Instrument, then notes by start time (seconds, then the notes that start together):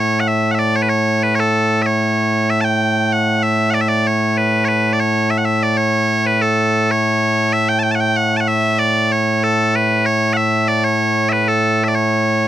bagpipes
Already playing: A2 A3 C#5
0.20 F#5
0.28 E5
0.51 E5 F#5
0.59 D5
0.76 C#5
0.82 B4
0.89 C#5
1.23 B4
1.35 C#5
1.40 A4
1.82 E5
1.86 C#5
2.50 E5
2.61 G5 A5
3.13 F#5
3.43 E5
3.71 D5 F#5
3.81 E5
3.88 D5
4.07 C#5
4.37 B4
4.65 B4 C#5
4.93 D5
5.00 C#5
5.30 E5
5.38 F#5
5.45 E5
5.63 D5
5.78 C#5
6.26 B4
6.42 A4
6.91 C#5
7.53 E5
7.69 G5
7.79 G5 A5
7.91 F#5 A5
8.00 G5
8.17 F#5
8.37 F#5 A5
8.48 E5
8.79 D5
9.12 C#5
9.44 A4
9.76 B4
10.06 C#5
10.33 E5 F#5
10.68 D5
10.84 C#5
11.29 B4 E5
11.48 A4
11.84 E5
11.88 D5
11.95 C#5